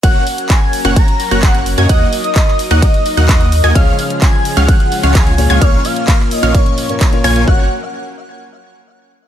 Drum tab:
RD |x---x---x---x---|x---x---x---x---|x---x---x---x---|x---x---x---x---|
HH |x-oxx-oxxxoxxxox|x-oxx-oxxxoxxxox|x-oxx-oxxxoxxxox|x-oxx-oxxxoxxxox|
CP |----x-------x---|----xx------x---|----x-------x---|----xx------x---|
BD |o---o---o---o---|o---o---o---o---|o---o---o---o---|o---o---o---o---|

RD |----------------|
HH |----------------|
CP |----------------|
BD |o---------------|